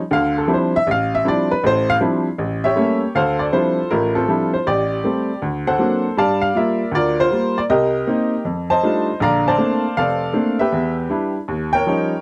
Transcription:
upright piano
0.11 D2 D3 F5
0.38 A4
0.48 F3 G3 C4 D4 E4
0.54 C5
0.76 E5
0.87 A1
0.91 F5
1.15 E5
1.25 F3 G3 C4 D4 E4 D5
1.51 B4
1.64 A1 A2 C5
1.90 F5
2.01 F3 G3 C4 D4 E4
2.38 A1
2.64 G4 C#5 E5
2.75 G3 A3 A#3 C#4
3.15 D2 A4 C5 F5
3.39 D5
3.53 F3 G3 C4 D4 E4 F4 C5
3.91 A1 A2 E4 F4 A#4
4.15 C4 F4 A4
4.28 F3 G3 C4 D4 E4
4.53 C5
4.67 A1 G4 D5
5.04 G3 A3 C4
5.42 D2
5.67 A4 C5 F#5
5.79 F#3 A#3 C4 D4
6.17 G2 G3 D5 F5 A5
6.42 F5
6.55 G3 A#3 F4 A#4 E5
6.91 D2 F4 A#4 D5
7.20 F4 C5
7.31 G3 A#3 F4
7.58 D5
7.69 C2 G4 A#4 D#5
8.07 A#3 C4 D#4
8.45 F2
8.70 C5 D#5 A5
8.83 G3 A3 D4 D#4 F4
9.20 A#1 D3 D5 F5 A#5
9.48 C5 D5 A5
9.58 A3 A#3 C4 D4
9.97 F1 A4 D5 F5
10.33 A3 A#3 C4 D4
10.59 G4 B4 E5
10.72 E2
11.09 G3 D4 E4
11.48 D#2
11.73 A#4 C#5 G5
11.87 F3 G3 C#4 D#4

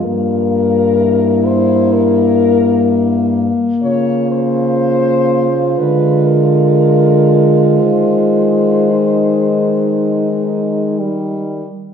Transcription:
french horn
Already playing: F4
0.04 G2 A#3 A#4
0.99 E4
1.46 C5
1.93 A#4
3.82 C#3 F4 C#5
4.31 C5
5.78 D3 G#3 B4
6.27 A#4
7.80 D#3 C5
8.91 D#4
10.99 G3

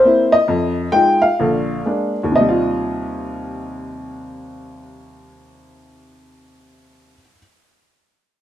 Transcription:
upright piano
Already playing: C5
0.05 A#3 C4 E4
0.32 D#5
0.48 F2
0.92 G#3 D#4 F4 G5
1.22 F5
1.40 A#1 D3
1.86 G#3 A#3 D4
2.23 D#2
2.32 C3 D#5
2.40 G3
2.49 F4

